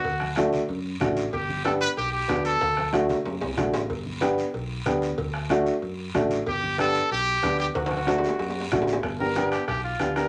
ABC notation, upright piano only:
X:1
M:4/4
L:1/8
Q:1/4=187
K:G
V:1 name="Upright piano"
z2 [A,DF] z3 [A,DF] z | z2 [B,DG] z3 [B,DF] z | z2 [A,DF] z3 [A,DF] z | z2 [B,DG] z3 [B,DG] z |
z2 [A,DF] z3 [A,DF] z | z2 [B,DG] z3 [B,DG] z | z2 [A,DF] z3 [A,DF] z | z [B,DG] [B,DG] z3 [B,DG] [B,DG] |]